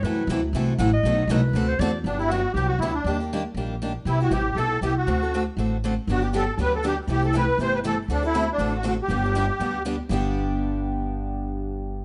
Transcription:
X:1
M:4/4
L:1/16
Q:"Swing" 1/4=239
K:Dmix
V:1 name="Clarinet"
B4 z8 f2 ^d2- | ^d4 B6 c2 =d3 z | [K:G] z16 | z16 |
z16 | z16 | z16 | z16 |
z16 | z16 | z16 | z16 |]
V:2 name="Accordion"
z16 | z16 | [K:G] D2 E2 F4 G2 F2 E2 D2- | D2 z12 z2 |
E2 F2 G4 A4 G2 F2- | F6 z8 z2 | F2 G2 A3- A/2 A/2 B2 A2 G2 z2 | G2 A2 B4 c2 B2 A2 z2 |
D2 E4 D4 F2 F2 G2- | G12 z4 | z16 | z16 |]
V:3 name="Steel-string acoustic guitar"
[F,CEA]2 z2 [F,CEA]2 z2 [F,CEA]2 z2 [F,CEA]2 z2 | [B,,^D,F,B,^DA]2 z2 [B,,D,F,B,DA]2 z2 [=D,A,CFA]2 z2 [D,A,CFA]2 z2 | [K:G] z16 | z16 |
z16 | z16 | [D,F,B,DG]2 z2 [D,F,B,DG]2 z2 [D,F,B,DG]2 z2 [D,F,B,DG]2 z2 | [C,E,G,CEA]2 z2 [C,E,G,CEA]2 z2 [C,E,G,CEA]2 z2 [C,E,G,CEA]2 z2 |
[D,A,CFA]2 z2 [D,A,CFA]2 z2 [D,A,CFA]2 z2 [D,A,CFA]2 z2 | [D,G,B,DG]2 z2 [D,G,B,DG]2 z2 [D,G,B,DG]2 z2 [D,G,B,DG]2 z2 | [G,,D,G,B,DG]16- | [G,,D,G,B,DG]16 |]
V:4 name="Steel-string acoustic guitar"
[C,E,A,EF]2 z2 [C,E,A,EF]2 z2 [C,E,A,EF]2 z2 [C,E,A,EF]2 z2 | [B,,F,A,^DF]2 z2 [B,,F,A,DF]2 z2 [=D,A,CFA]2 z2 [D,A,CFA]2 z2 | [K:G] [D,F,B,DG]2 [B,DG]2 [D,F,B,DG]2 z2 [D,F,B,DG]2 z2 [D,F,B,DG]2 z2 | [_E,G,_B,DG]2 [B,DG]2 [E,G,B,DG]2 z2 [E,G,B,DG]2 z2 [E,G,B,DG]2 z2 |
[C,G,B,EG]2 [B,EG]2 [C,G,B,EG]2 z2 [C,G,B,EG]2 z2 [C,G,B,EG]2 z2 | [D,A,CFA]2 [CFA]2 [D,A,CFA]2 z2 [D,A,CFA]2 z2 [D,A,CFA]2 z2 | [D,F,B,DG]2 [B,DG]2 [D,F,B,DG]2 z2 [D,F,B,DG]2 z2 [D,F,B,DG]2 z2 | [C,E,A,EG]2 [A,EG]2 [C,E,A,EG]2 z2 [C,E,A,EG]2 z2 [C,E,A,EG]2 z2 |
[D,A,CFA]2 [CFA]2 [D,A,CFA]2 z2 [D,A,CFA]2 z2 [D,A,CFA]2 z2 | [D,G,B,DG]2 [B,DG]2 [D,G,B,DG]2 z2 [D,G,B,DG]2 z2 [D,G,B,DG]2 z2 | [G,,D,G,B,DG]16- | [G,,D,G,B,DG]16 |]
V:5 name="Upright bass" clef=bass
F,,4 D,,4 C,,4 A,,,4 | B,,,4 C,,4 D,,4 E,,4 | [K:G] G,,,8 C,,4 D,,4 | _E,,8 _B,,,8 |
C,,4 A,,,4 B,,,4 C,,4 | D,,8 A,,,8 | G,,,8 D,,8 | C,,8 G,,,8 |
D,,8 A,,,8 | G,,,8 D,,8 | G,,,16- | G,,,16 |]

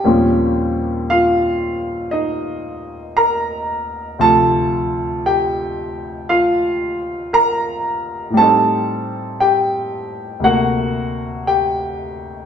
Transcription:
X:1
M:4/4
L:1/8
Q:"Swing" 1/4=58
K:Dm
V:1 name="Grand piano"
[Gg] z [Ff]2 [_E_e]2 [Bb]2 | [Aa]2 [Gg]2 [Ff]2 [Bb]2 | [Aa]2 [Gg]2 [^F^f]2 [Gg]2 |]
V:2 name="Grand piano" clef=bass
[_E,,B,,F,G,C_D]8 | [D,,C,F,F]8 | [A,,G,C_E]4 [D,,C,A,B,]4 |]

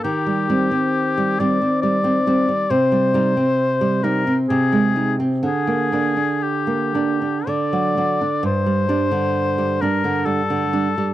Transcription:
X:1
M:3/4
L:1/16
Q:1/4=66
K:Gm
V:1 name="Oboe"
G6 d2 d4 | c6 B2 _A2 z2 | _A4 G4 d4 | c6 B2 A4 |]
V:2 name="Nylon-string guitar" clef=bass
E, G, [G,C] C2 G, [G,C] C G, C [G,C] G, | C, G, [G,E] C2 G, [G,E] C C, _A, [A,E] C | D, B, [B,D] D2 B, [B,D] D D, ^F, [F,D] D | G,, G, [G,D] D,2 G, [G,D] D, G, D, [G,D] G, |]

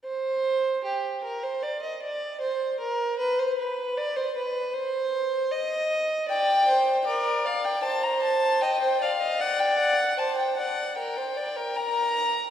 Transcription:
X:1
M:4/4
L:1/16
Q:1/4=77
K:Gphr
V:1 name="Violin"
z16 | z16 | g4 d2 f g =a b a2 g2 f2 | ^f g f2 =a g f2 g4 b4 |]
V:2 name="Violin"
c4 G2 B c d e d2 c2 B2 | =B c B2 d c B2 c4 e4 | d2 c2 B2 d2 c4 e c d e | d4 c2 d2 B c d B4- B |]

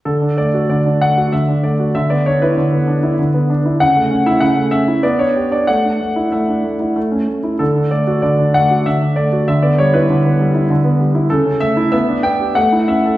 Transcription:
X:1
M:3/4
L:1/16
Q:1/4=95
K:D
V:1 name="Grand piano"
A2 d2 d2 f2 e2 d2 | e d c B6- B z2 | f3 e f2 e2 d c2 d | f4 e4 z4 |
A2 d2 d2 f2 e2 d2 | e d c B6- B z2 | A2 e2 e2 g2 f2 e2 |]
V:2 name="Grand piano"
D, D A, F D, D A, F D, D A, F | D, B, D E D, B, D E D, B, D E | C, A, C E C, A, C E B, D G D | A, D A, E A, D A, E A, C A, E |
D, D A, F D, D A, F D, D A, F | D, B, G, E D, B, G, E D, B, G, E | C, C A, E B, D B, G A, E C A |]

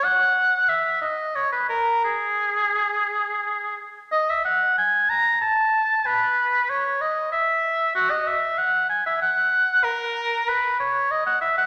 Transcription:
X:1
M:3/4
L:1/16
Q:1/4=94
K:G#m
V:1 name="Oboe"
f4 e2 d2 c B A2 | G8- G2 z2 | [K:F#mix] d e f2 g2 a2 =a4 | B4 c2 d2 e4 |
F d e2 f2 g e f4 | A4 B2 c2 d f e f |]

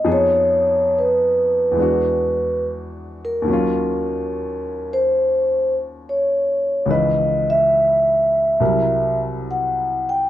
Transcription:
X:1
M:4/4
L:1/8
Q:"Swing" 1/4=70
K:Ebdor
V:1 name="Vibraphone"
d2 _c4 z B- | B3 c2 z d2 | e _f4 z ^f =g |]
V:2 name="Grand piano" clef=bass
[F,,F,_CEA]4 [=E,,=E,^G,=D^F]4 | [E,,E,G,DF]8 | [D,,D,E,_F,_c]4 [=C,,C,^F,=EB]4 |]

